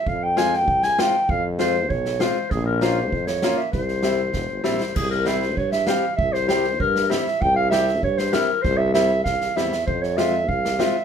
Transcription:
<<
  \new Staff \with { instrumentName = "Clarinet" } { \time 2/4 \tempo 4 = 98 f''16 g''16 aes''16 g''8 aes''16 g''8 | f''16 r16 c''8 des''8 c''8 | aes'16 bes'16 c''8. des''8 e''16 | c''4. c''8 |
aes'16 bes'16 c''8 des''16 e''16 f''8 | e''16 c''16 c''8 bes'8 e''8 | g''16 f''16 e''8 des''16 c''16 bes'8 | c''16 e''16 e''8 f''8 e''8 |
c''16 des''16 e''8 f''8 e''8 | }
  \new Staff \with { instrumentName = "Upright piano" } { \time 2/4 r8 <aes c' f'>16 r8. <aes c' f'>16 r16 | r8 <aes c' f'>16 r8. <aes c' f'>16 r16 | r8 <bes des' f'>16 r8. <bes des' f'>16 r16 | r8 <g c' e'>16 r8. <g c' e'>16 r16 |
r8 <g c' e'>16 r8. <g c' g'>16 r16 | r8 <g c' g'>16 r8. <g c' e'>16 r16 | r8 <g c' g'>16 r8. <g c' e'>16 r16 | r8 <g c' e'>16 r8. <g c' e'>16 r16 |
r8 <aes c' f'>16 r8. <aes c' f'>16 r16 | }
  \new Staff \with { instrumentName = "Tuba" } { \clef bass \time 2/4 f,4 c,4 | f,4 b,,4 | bes,,4 f,4 | c,4 e,,16 g,,16 bes,,16 c,16 |
c,4 g,4 | c,4 g,4 | c,4 g,4 | c,4 c,8 e,8 |
f,4 c,4 | }
  \new DrumStaff \with { instrumentName = "Drums" } \drummode { \time 2/4 bd8 sn8 bd16 sn16 sn8 | bd8 sn8 bd16 sn16 sn8 | <bd sn>8 sn8 bd16 sn16 sn8 | <bd sn>16 sn16 sn8 <bd sn>8 sn16 sn16 |
<cymc bd sn>16 sn16 sn16 sn16 bd16 sn16 sn8 | bd16 sn16 sn16 sn16 bd16 sn16 sn16 sn16 | bd8 sn16 sn16 bd16 sn16 sn8 | <bd sn>8 sn8 <bd sn>16 sn16 sn16 sn16 |
bd16 sn16 sn8 bd16 sn16 sn8 | }
>>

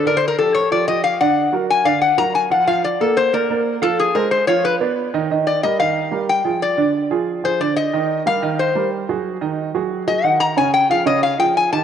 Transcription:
<<
  \new Staff \with { instrumentName = "Resonator guitar played with a steel bar" } { \time 4/4 \key g \minor \tempo 4 = 183 \tuplet 3/2 { bes'8 c''8 bes'8 } a'8 cis''8 d''8 ees''8 f''8 fis''8~ | fis''8 r8 aes''8 f''8 fis''8 ais''8 aes''8 fis''8 | f''8 d''8 a'8 c''8 bes'4. a'8 | aes'8 bes'8 c''8 cis''8 b'8 r4. |
\key ees \major r8 d''8 ees''8 f''4. g''4 | d''4 r4. c''8 d''8 ees''8~ | ees''4 f''4 c''4 r4 | r2 r8 ees''8 fis''8 bes''8 |
aes''8 g''8 f''8 ees''8 f''8 g''8 aes''8 a''8 | }
  \new Staff \with { instrumentName = "Grand piano" } { \time 4/4 \key g \minor <d d' d''>4 <f f' g'>4 <f f' g'>8 <f f' g'>4 <d d' d''>8~ | <d d' d''>8 <fis fis' ais'>4 <d d' d''>4 <fis fis' ais'>4 <f f' f''>8 | <f f' f''>4 <bes bes' d''>4 <bes bes' d''>8 <bes bes' d''>4 <f f' f''>8~ | <f f' f''>8 <aes aes' c''>4 <f f' f''>4 <b b' d''>4 <ees ees' ees''>8 |
\key ees \major <ees ees' ees''>4 <g g' bes'>8 <ees ees' ees''>4 <g g' bes'>4 <f f' aes'>8~ | <f f' aes'>8 <d d' d''>4 <f f' aes'>4 <f f' aes'>8 <d d' d''>4 | <ees ees' ees''>4 <g g' bes'>8 <ees ees' ees''>4 <g g' bes'>4 <fis fis' aes'>8~ | <fis fis' aes'>8 <ees ees' ees''>4 <fis fis' aes'>4 <fis fis' aes'>8 <ees ees' ees''>4 |
<des des' des''>4 <f f' aes'>8 <des des' des''>4 <f f' aes'>4 <ees ees' g'>8 | }
>>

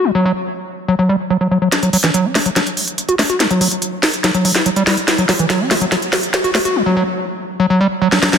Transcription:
<<
  \new Staff \with { instrumentName = "Acid bass" } { \clef bass \time 4/4 \key fis \phrygian \tempo 4 = 143 fis16 fis16 fis16 r4 r16 fis16 fis16 g16 r16 fis16 fis16 fis16 fis16 | r16 fis16 fis16 e16 fis16 cis'16 a16 fis16 fis16 r4 fis'16 a16 fis'16 | fis16 fis16 fis16 r4 r16 fis16 fis16 fis16 r16 fis16 g16 g16 r16 | r16 fis16 fis16 e16 fis16 cis'16 a16 fis16 fis16 r4 fis'16 a16 fis'16 |
fis16 fis16 fis16 r4 r16 fis16 fis16 g16 r16 fis16 fis16 fis16 fis16 | }
  \new DrumStaff \with { instrumentName = "Drums" } \drummode { \time 4/4 r4 r4 r4 r4 | <hh sn>16 hh16 hho16 <hh sn>16 hh8 <hho sn>16 hh16 <hh sn>16 hh16 hho16 hh16 hh16 hh16 <hho sn>16 hh16 | <hh sn>16 hh16 hho16 hh16 hh8 <hho sn>16 hh16 <hh sn>16 hh16 hho16 sn16 hh16 hh16 <hho sn>16 hh16 | <hh sn>16 hh16 <hho sn>16 hh16 <hh sn>8 <hho sn>16 hh16 <hh sn>16 hh16 <hho sn>16 hh16 <hh sn>16 hh16 <hho sn>16 hh16 |
r4 r4 r4 r16 sn16 sn16 sn16 | }
>>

